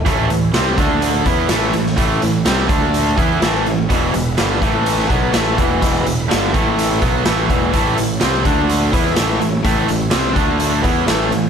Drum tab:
HH |x-x-x-x-x-x-x-x-|x-x-x-x-x-x-x-x-|x-x-x-x-x-x-x-x-|x-x-x-x-x-x-x-x-|
SD |----o-------o--o|----o-------o---|----o----o--o---|----o-------o---|
BD |o-----o---o-----|o-----o---o-----|o-----o---o---o-|o-----o---o---o-|

HH |x-x-x-x-x-x-x-x-|x-x-x-x-x-x-x-x-|
SD |----o-------o---|----o-------o---|
BD |o-----o---o-----|o-----o---o-----|